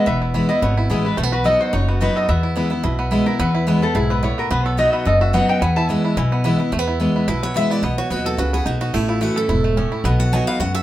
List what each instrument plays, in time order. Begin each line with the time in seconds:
Already playing: five-string banjo E4
0.06 upright bass E1, steel-string acoustic guitar E2, five-string banjo B3, resonator guitar played with a steel bar E5
0.22 five-string banjo E4
0.34 steel-string acoustic guitar E3 G#3 B3 E4, five-string banjo E4
0.49 steel-string acoustic guitar B3 E4, five-string banjo E4, resonator guitar played with a steel bar D#5
0.62 upright bass G#1, steel-string acoustic guitar B2, five-string banjo B3, resonator guitar played with a steel bar C#5
0.77 five-string banjo E4, resonator guitar played with a steel bar E4
0.90 upright bass A1, steel-string acoustic guitar E3 G#3 B3 E4, five-string banjo E4, resonator guitar played with a steel bar G#4
1.05 five-string banjo E4, resonator guitar played with a steel bar B4
1.17 upright bass B1, steel-string acoustic guitar B2, five-string banjo A3, resonator guitar played with a steel bar A4
1.23 five-string banjo B3
1.32 five-string banjo F#4, resonator guitar played with a steel bar B4
1.44 steel-string acoustic guitar F#3 B3 D#4 F#4, five-string banjo A4, resonator guitar played with a steel bar D#5
1.61 five-string banjo F#4, resonator guitar played with a steel bar C5
1.73 upright bass F#1, steel-string acoustic guitar F#2, five-string banjo D#4, resonator guitar played with a steel bar C#5
1.88 five-string banjo B3, resonator guitar played with a steel bar F#4
2.01 steel-string acoustic guitar F#3 B3 D#4 F#4, five-string banjo F#4, resonator guitar played with a steel bar B4
2.16 five-string banjo A4, resonator guitar played with a steel bar D#5
2.29 upright bass E2, steel-string acoustic guitar E2, five-string banjo B3, resonator guitar played with a steel bar E5
2.43 five-string banjo E4
2.56 steel-string acoustic guitar E3 G#3 B3 E4, five-string banjo E4
2.70 steel-string acoustic guitar B3 E4, five-string banjo E4
2.83 upright bass B1, steel-string acoustic guitar B2, five-string banjo E4
2.99 five-string banjo B3
3.11 steel-string acoustic guitar E3 G#3 B3 E4, five-string banjo E4
3.26 steel-string acoustic guitar B3 E4, five-string banjo E4, resonator guitar played with a steel bar A#4
3.39 upright bass E2, steel-string acoustic guitar E2, five-string banjo B3, resonator guitar played with a steel bar B4
3.55 five-string banjo E4
3.67 steel-string acoustic guitar E3 G#3 B3 E4, five-string banjo B3
3.82 steel-string acoustic guitar B3 E4, five-string banjo E4, resonator guitar played with a steel bar A4
3.95 upright bass B1, steel-string acoustic guitar G#2, five-string banjo E4, resonator guitar played with a steel bar G#4
4.10 five-string banjo B3, resonator guitar played with a steel bar B4
4.23 steel-string acoustic guitar A2, five-string banjo E4, resonator guitar played with a steel bar C#5
4.38 five-string banjo B3, resonator guitar played with a steel bar A#4
4.51 upright bass B1, steel-string acoustic guitar B2, five-string banjo B3, resonator guitar played with a steel bar B4
4.65 five-string banjo A4, resonator guitar played with a steel bar C#5
4.77 steel-string acoustic guitar F#3 B3 D#4 F#4, five-string banjo F#4, resonator guitar played with a steel bar D#5
4.93 five-string banjo B3, resonator guitar played with a steel bar E5
5.05 upright bass F#1, steel-string acoustic guitar F#2, five-string banjo A4, resonator guitar played with a steel bar D#5
5.21 five-string banjo F#4, resonator guitar played with a steel bar E5
5.33 steel-string acoustic guitar F#3 B3 D#4 F#4, five-string banjo B3, resonator guitar played with a steel bar F#5
5.49 five-string banjo D#4, resonator guitar played with a steel bar G5
5.61 upright bass E2, steel-string acoustic guitar E2, five-string banjo B3, resonator guitar played with a steel bar G#5
5.76 five-string banjo E4, resonator guitar played with a steel bar A5
5.89 steel-string acoustic guitar E3 G#3 B3 E4, five-string banjo E4, resonator guitar played with a steel bar G#5
6.04 five-string banjo E4, resonator guitar played with a steel bar A5
6.17 upright bass B1, steel-string acoustic guitar B2, five-string banjo E4, resonator guitar played with a steel bar G#5
6.32 five-string banjo B3
6.44 steel-string acoustic guitar E3 G#3 B3 E4, five-string banjo E4
6.58 steel-string acoustic guitar B3 E4, five-string banjo E4
6.72 upright bass E2, steel-string acoustic guitar E2, five-string banjo A3
6.79 five-string banjo B3
6.88 five-string banjo E4
7.00 steel-string acoustic guitar E3 G#3 B3 E4, five-string banjo B3
7.16 five-string banjo E4
7.28 upright bass B1, steel-string acoustic guitar B2 B4, five-string banjo E4
7.43 five-string banjo B3, steel-string acoustic guitar C#5
7.54 steel-string acoustic guitar E3 G#3 B3 E4 E5, five-string banjo E4
7.70 five-string banjo E4, steel-string acoustic guitar D5
7.82 upright bass B1, steel-string acoustic guitar B2 D#5, five-string banjo B3
7.98 five-string banjo F#4, steel-string acoustic guitar C#5
8.10 upright bass D#2, steel-string acoustic guitar F#3 B3 D#4 F#4 B4, five-string banjo B3
8.26 five-string banjo A4, steel-string acoustic guitar A4
8.38 upright bass C#2, steel-string acoustic guitar C#3 B4, five-string banjo F#4
8.53 five-string banjo B3, steel-string acoustic guitar G#4
8.66 upright bass B1, steel-string acoustic guitar B2 F#4, five-string banjo D#4
8.81 steel-string acoustic guitar D#4, five-string banjo F#4
8.94 upright bass A1, steel-string acoustic guitar A2 E4, five-string banjo A3
9.09 five-string banjo E4, steel-string acoustic guitar F4
9.21 steel-string acoustic guitar E3 A3 C#4 E4 F#4, five-string banjo A3
9.36 five-string banjo A4, steel-string acoustic guitar A4
9.49 upright bass E1, steel-string acoustic guitar G#2, five-string banjo E4
9.64 five-string banjo A3
9.77 steel-string acoustic guitar A2, five-string banjo C#4
9.92 five-string banjo E4
10.04 upright bass B1, steel-string acoustic guitar B2 D#5, five-string banjo B3
10.20 five-string banjo F#4, steel-string acoustic guitar F#5
10.32 steel-string acoustic guitar F#3 B3 D#4 F#4 G#5, five-string banjo F#3
10.47 five-string banjo B3, steel-string acoustic guitar F5
10.60 upright bass F#2, steel-string acoustic guitar F#2 F#5, five-string banjo F#4
10.75 five-string banjo A4, steel-string acoustic guitar E5